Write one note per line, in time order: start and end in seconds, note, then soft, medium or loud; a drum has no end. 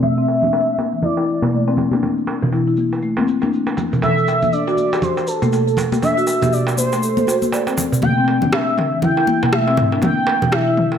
0.02 0.16 A3 medium
0.02 0.99 E5 loud
0.02 low conga medium
0.02 shaker soft
0.18 0.23 C4 medium
0.18 shaker soft
0.27 darbuka tek medium
0.27 shaker medium
0.42 0.52 D4 medium
0.42 high conga medium
0.42 low conga medium
0.42 shaker soft
0.53 darbuka tek medium
0.53 shaker soft
0.68 shaker soft
0.78 high conga medium
0.78 darbuka tek medium
0.78 shaker medium
0.93 1.02 E3 medium
0.93 shaker soft
1.02 1.17 E4 medium
1.02 1.74 D5 loud
1.02 low conga medium
1.02 shaker soft
1.17 1.27 E4 medium
1.17 darbuka tek medium
1.17 shaker soft
1.28 shaker medium
1.42 darbuka ka medium
1.42 high conga medium
1.42 darbuka tek medium
1.42 darbuka dum medium
1.42 shaker soft
1.53 1.66 A3 medium
1.53 shaker soft
1.68 1.73 C4 medium
1.68 darbuka tek medium
1.68 shaker soft
1.77 darbuka ka medium
1.77 low conga medium
1.77 shaker medium
1.92 2.02 D4 medium
1.92 darbuka ka medium
1.92 high conga loud
1.92 shaker soft
2.03 darbuka tek medium
2.03 low conga medium
2.03 shaker soft
2.18 shaker soft
2.27 darbuka ka medium
2.27 darbuka tek medium
2.27 shaker medium
2.42 2.52 E3 medium
2.42 darbuka dum medium
2.42 low conga medium
2.42 shaker soft
2.52 2.66 E4 medium
2.52 darbuka tek medium
2.52 shaker soft
2.67 2.77 E4 medium
2.67 shaker soft
2.77 high conga medium
2.77 shaker medium
2.92 darbuka tek medium
2.92 shaker soft
3.02 3.16 A3 medium
3.02 shaker soft
3.17 3.23 C4 medium
3.17 darbuka tek medium
3.17 high conga medium
3.17 shaker soft
3.27 high conga medium
3.27 shaker medium
3.42 3.52 D4 medium
3.42 darbuka tek medium
3.42 high conga medium
3.42 shaker soft
3.53 shaker medium
3.67 darbuka ka loud
3.67 shaker soft
3.77 darbuka tek medium
3.77 high conga medium
3.77 low conga medium
3.77 shaker medium
3.92 4.02 E3 medium
3.92 darbuka dum medium
3.92 shaker soft
4.02 4.16 A4 medium
4.02 4.54 E5 loud
4.02 darbuka tek medium
4.02 low conga medium
4.02 shaker soft
4.17 4.27 A4 medium
4.17 shaker soft
4.28 darbuka tek medium
4.28 shaker medium
4.42 high conga medium
4.42 low conga medium
4.42 shaker soft
4.53 4.66 D4 medium
4.53 5.04 D5 loud
4.53 shaker soft
4.67 4.73 F#4 medium
4.67 darbuka tek medium
4.67 shaker soft
4.77 high conga medium
4.77 shaker medium
4.92 5.02 G4 medium
4.92 darbuka tek medium
4.92 shaker soft
5.02 5.29 C5 loud
5.02 low conga medium
5.02 shaker soft
5.17 darbuka tek medium
5.17 shaker soft
5.27 5.77 A4 medium
5.27 shaker medium
5.42 5.52 A3 medium
5.42 darbuka ka medium
5.42 high conga medium
5.42 darbuka dum medium
5.42 shaker soft
5.53 5.66 A4 medium
5.53 darbuka tek medium
5.53 shaker soft
5.68 5.77 A4 medium
5.68 shaker soft
5.77 darbuka ka medium
5.77 darbuka tek medium
5.77 low conga medium
5.77 shaker medium
5.92 darbuka ka medium
5.92 high conga medium
5.92 shaker soft
6.02 6.16 D4 medium
6.02 6.54 E5 loud
6.02 darbuka tek medium
6.02 low conga medium
6.02 shaker soft
6.17 6.23 F#4 medium
6.17 shaker soft
6.27 darbuka ka medium
6.27 shaker medium
6.42 6.52 G4 medium
6.42 high conga medium
6.42 darbuka tek medium
6.42 low conga medium
6.42 darbuka dum medium
6.42 shaker soft
6.53 6.77 D5 loud
6.53 shaker soft
6.67 darbuka tek medium
6.67 shaker soft
6.77 7.74 C5 medium
6.77 high conga medium
6.77 shaker medium
6.92 7.02 A3 medium
6.92 darbuka tek medium
6.92 shaker soft
7.02 7.16 A4 medium
7.02 shaker soft
7.17 7.27 A4 medium
7.17 high conga loud
7.17 shaker soft
7.27 7.42 F#4 medium
7.27 high conga medium
7.27 darbuka tek medium
7.27 shaker medium
7.42 high conga medium
7.42 shaker soft
7.52 7.66 D5 medium
7.52 darbuka tek medium
7.52 shaker soft
7.67 7.77 C4 medium
7.67 darbuka ka loud
7.67 shaker soft
7.78 darbuka tek medium
7.78 low conga medium
7.78 shaker medium
7.92 darbuka dum medium
7.92 shaker soft
8.02 8.14 A1 loud
8.02 8.16 A3 medium
8.02 8.49 G5 loud
8.02 mid tom soft
8.02 high conga medium
8.02 low conga medium
8.18 8.23 C4 loud
8.28 darbuka tek medium
8.42 8.74 E1 loud
8.42 8.52 D4 medium
8.42 mid tom soft
8.42 high conga medium
8.42 low conga medium
8.53 8.99 E5 loud
8.53 cross-stick loud
8.53 darbuka tek medium
8.78 8.98 A1 medium
8.78 mid tom soft
8.78 darbuka tek medium
8.93 9.02 E3 medium
9.02 9.23 A1 medium
9.02 9.16 E4 medium
9.02 9.49 G5 loud
9.02 mid tom soft
9.02 low conga medium
9.17 9.27 E4 medium
9.17 darbuka tek medium
9.27 9.62 A1 medium
9.27 high conga loud
9.43 darbuka ka medium
9.43 high conga medium
9.43 darbuka tek medium
9.43 darbuka dum medium
9.53 9.66 A3 medium
9.53 10.00 E5 loud
9.53 cross-stick loud
9.67 9.75 A1 medium
9.67 9.73 C4 medium
9.67 darbuka tek medium
9.77 mid tom medium
9.77 darbuka ka medium
9.77 low conga medium
9.92 10.02 D4 medium
9.92 darbuka ka medium
10.02 10.14 A1 loud
10.02 10.55 G5 loud
10.02 mid tom medium
10.02 darbuka tek medium
10.02 high conga medium
10.02 low conga medium
10.27 darbuka ka medium
10.27 darbuka tek loud
10.42 10.74 E1 loud
10.42 10.52 E3 medium
10.42 low conga loud
10.42 darbuka dum medium
10.52 10.66 E4 medium
10.52 10.98 E5 loud
10.52 cross-stick loud
10.52 darbuka tek medium
10.67 10.77 E4 medium
10.77 10.98 A1 medium
10.77 mid tom medium
10.92 darbuka tek medium